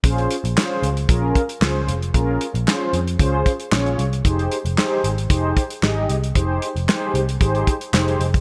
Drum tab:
HH |xxxx--xxx-xx--xx|x-xx--xxx-xx-xxx|xxxx--xxx-xx--xx|x-xx--xxxxxx-xxx|
CP |----x-------x---|----x-------x---|----x-------x---|----x-------x---|
SD |----o-------o---|----o-------o---|----o-------o---|----o-------o---|
BD |o-------o-o-----|o-------o-o-----|o-------o-o-----|o-------o-o----o|